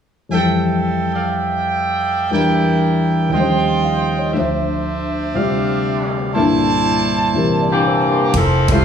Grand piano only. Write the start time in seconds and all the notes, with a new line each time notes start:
0.29 F2 E3 F3 G3
0.33 A4
2.31 E2 E3 G3 D4 A#4
3.29 D#2 D#3 F3
3.35 G3 C#4
3.40 C5
3.85 F5
4.02 D#5
4.18 C#5
4.33 D2 D3 F3
4.38 C5 E5
5.34 C3 G3 F4 D5
6.35 C2 G2 A#2 D3 E4 A4
7.34 C3 E3 C4 G4 A#4
7.62 D5
7.86 C5
8.12 A#4
8.72 G3 A3 C4 E4